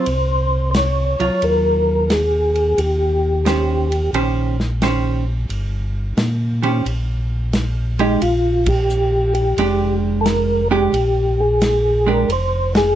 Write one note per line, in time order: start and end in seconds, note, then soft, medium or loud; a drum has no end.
0.00 0.70 C5 medium
0.06 1.16 C2 medium
0.06 ride medium
0.71 0.75 C5 medium
0.71 snare medium
0.71 hi-hat pedal medium
0.71 ride medium
0.77 1.45 C#5 medium
1.20 1.31 C2 soft
1.20 2.06 F#3 soft
1.20 2.07 F4 medium
1.20 ride soft
1.42 2.74 D#2 medium
1.42 2.13 A#4 medium
1.42 ride medium
2.10 2.81 G#4 medium
2.10 snare medium
2.10 hi-hat pedal medium
2.10 ride medium
2.55 ride soft
2.78 4.10 D#2 loud
2.78 4.11 G4 medium
2.78 ride medium
3.45 3.87 D#3 medium
3.45 3.87 C#4 medium
3.45 3.87 G4 medium
3.45 3.88 C5 medium
3.45 snare medium
3.45 hi-hat pedal medium
3.45 ride medium
3.92 ride soft
4.13 5.46 A#1 medium
4.13 4.55 D#3 medium
4.13 4.55 C#4 medium
4.13 4.55 G4 medium
4.13 4.56 C5 medium
4.13 ride medium
4.60 snare soft
4.82 5.23 D#3 soft
4.82 5.23 C#4 medium
4.82 5.24 G4 soft
4.82 5.24 C5 medium
4.82 snare medium
4.82 hi-hat pedal medium
4.82 ride medium
5.49 6.14 G1 medium
5.49 ride medium
6.17 6.82 A#2 medium
6.17 snare medium
6.17 hi-hat pedal medium
6.17 ride medium
6.63 6.83 D#3 medium
6.63 6.84 C#4 medium
6.63 6.84 G4 medium
6.63 6.84 C5 medium
6.63 ride soft
6.86 8.18 A#1 medium
6.86 ride medium
7.53 snare medium
7.53 hi-hat pedal medium
7.53 ride medium
7.99 8.20 G#3 medium
7.99 8.21 D#4 medium
7.99 8.20 G4 medium
7.99 ride soft
8.22 9.54 A#1 medium
8.22 8.69 F4 loud
8.22 ride medium
8.66 9.33 G4 loud
8.66 kick medium
8.66 ride medium
8.90 hi-hat pedal medium
9.35 9.99 G4 medium
9.35 ride soft
9.57 10.89 F1 medium
9.57 10.62 G#3 medium
9.57 10.63 D4 medium
9.57 10.63 G4 medium
9.57 ride medium
10.21 10.26 A4 medium
10.26 10.68 A#4 medium
10.26 snare medium
10.26 hi-hat pedal medium
10.26 ride medium
10.71 10.91 G#3 medium
10.71 10.91 D4 medium
10.71 11.41 G4 medium
10.71 10.92 G4 medium
10.93 12.25 A#1 medium
10.93 ride medium
11.40 12.10 G#4 medium
11.62 snare medium
11.62 hi-hat pedal medium
11.62 ride medium
12.07 12.27 G#3 medium
12.07 12.28 D4 medium
12.07 12.28 G4 medium
12.07 12.31 A#4 medium
12.29 12.95 F1 medium
12.29 12.73 C5 medium
12.29 ride medium
12.75 12.95 G#4 loud
12.75 snare medium
12.75 ride medium